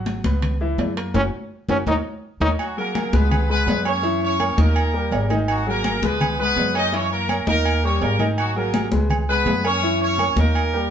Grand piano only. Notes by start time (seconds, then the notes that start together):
Already playing: F#3 F#4 F#5
0.25 B3 B4 B5
0.61 E3 E4 E5
0.97 A#3 A#4 A#5
1.14 F#4 A#4 C#5
1.69 F#4 A#4 C#5
1.87 A#4 C#5 D#5
2.42 A#4 C#5 D#5
2.77 F#3 F#4 G#4
3.13 G#3 G#4 B4
3.50 G#3 G#4 B4
3.85 A#3 A#4 C#5
4.03 E3 E4 E5
4.40 A#3 A#4 C#5
4.57 D#3 D#4 D#5
4.93 G3 G4 A#4
5.30 D#3 D#4 D#5
5.66 F#3 F#4 G#4
6.03 G#3 G#4 B4
6.39 G#3 G#4 B4
6.74 A#3 A#4 C#5
6.92 E3 E4 E5
7.29 A#3 A#4 C#5
7.47 D#3 D#4 D#5
7.83 G3 G4 A#4
8.19 D#3 D#4 D#5
8.56 F#3 F#4 G#4
8.92 G#3 G#4 B4
9.29 G#3 G#4 B4
9.64 A#3 A#4 C#5
9.82 E3 E4 E5
10.19 A#3 A#4 C#5
10.37 D#3 D#4 D#5
10.73 G3 G4 A#4